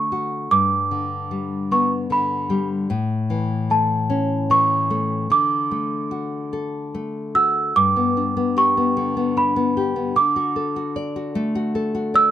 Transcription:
0.00 0.48 D3 medium
0.00 0.49 A3 soft
0.00 0.11 F#4 soft
0.00 0.48 A4 medium
0.00 0.54 C#6 medium
0.12 0.50 F#4 medium
0.51 2.86 G2 medium
0.51 1.75 D6 medium
0.91 2.09 D3 soft
1.31 2.48 G3 soft
1.71 2.86 B3 soft
1.71 1.90 C#6 medium
2.10 2.87 D3 soft
2.10 2.67 B5 medium
2.50 2.88 G3 soft
2.90 5.26 A2 medium
3.30 4.49 E3 soft
3.70 4.89 A3 soft
3.70 4.53 A5 medium
4.10 5.27 C#4 medium
4.50 5.28 E3 soft
4.50 5.27 C#6 medium
4.90 5.29 A3 medium
5.30 7.72 D3 medium
5.30 7.32 D6 medium
5.71 6.93 A3 soft
6.11 7.34 F#4 soft
6.53 7.73 A4 soft
6.94 7.74 A3 soft
7.35 7.75 F#4 soft
7.35 7.73 E6 medium
7.76 10.12 G2 medium
7.76 8.59 D6 medium
7.96 8.35 B3 medium
8.17 9.36 D4 soft
8.37 8.76 B3 soft
8.57 9.76 G4 soft
8.57 9.39 C#6 medium
8.77 9.16 B3 soft
8.97 10.13 D3 medium
9.17 9.55 B3 soft
9.37 10.14 D4 soft
9.37 10.19 B5 medium
9.56 9.95 B3 medium
9.77 10.15 G4 soft
9.96 10.15 B3 soft
10.16 12.31 D3 medium
10.16 10.92 D6 medium
10.36 10.75 F#4 soft
10.56 11.74 A4 soft
10.76 11.15 F#4 soft
10.96 12.13 D5 soft
11.16 11.54 F#4 soft
11.35 12.31 A3 medium
11.55 11.93 F#4 medium
11.75 12.31 A4 medium
11.95 12.31 F#4 medium
12.14 12.31 D5 medium
12.14 12.31 E6 loud

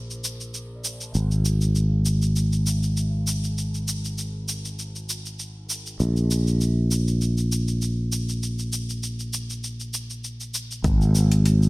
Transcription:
0.00 1.12 A#1 medium
0.10 cabasa soft
0.24 cabasa medium
0.40 cabasa soft
0.54 cabasa soft
0.84 cabasa medium
1.01 cabasa soft
1.15 5.97 G#1 medium
1.15 cabasa soft
1.31 cabasa soft
1.45 cabasa medium
1.61 cabasa soft
1.75 cabasa soft
2.06 cabasa medium
2.22 cabasa soft
2.36 cabasa soft
2.52 cabasa soft
2.67 cabasa medium
2.83 cabasa soft
2.97 cabasa soft
3.27 cabasa medium
3.44 cabasa soft
3.58 cabasa soft
3.75 cabasa soft
3.88 cabasa medium
4.05 cabasa soft
4.18 cabasa soft
4.48 cabasa medium
4.65 cabasa soft
4.79 cabasa soft
4.96 cabasa soft
5.09 cabasa medium
5.26 cabasa soft
5.39 cabasa soft
5.70 cabasa medium
5.86 cabasa soft
6.00 10.82 A#1 medium
6.00 cabasa soft
6.16 cabasa soft
6.31 cabasa medium
6.47 cabasa soft
6.61 cabasa soft
6.91 cabasa medium
7.08 cabasa soft
7.21 cabasa soft
7.38 cabasa soft
7.52 cabasa medium
7.68 cabasa soft
7.82 cabasa soft
8.12 cabasa medium
8.29 cabasa soft
8.43 cabasa soft
8.59 cabasa soft
8.73 cabasa medium
8.89 cabasa soft
9.03 cabasa soft
9.19 cabasa soft
9.33 cabasa medium
9.50 cabasa soft
9.64 cabasa soft
9.80 cabasa soft
9.94 cabasa medium
10.10 cabasa soft
10.24 cabasa soft
10.40 cabasa soft
10.54 cabasa medium
10.71 cabasa soft
10.84 11.69 G#1 medium
10.84 kick loud
10.84 closed hi-hat soft
10.84 cabasa soft
11.01 cabasa soft
11.15 cabasa medium
11.32 closed hi-hat medium
11.32 cabasa soft
11.46 closed hi-hat medium
11.46 cabasa soft
11.63 cabasa soft

